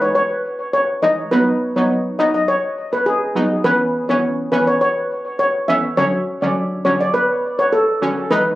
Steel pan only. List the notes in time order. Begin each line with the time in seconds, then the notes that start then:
0.02 C#5
0.15 C#5
0.73 C#5
1.03 D#5
1.31 B4
1.76 C#5
2.19 D#5
2.34 D#5
2.48 C#5
2.93 B4
3.06 G#4
3.64 B4
4.09 C#5
4.52 B4
4.67 C#5
4.81 C#5
5.39 C#5
5.68 E5
5.97 C#5
6.42 D5
6.85 C#5
7.01 D5
7.14 B4
7.59 C#5
7.73 A4
8.31 B4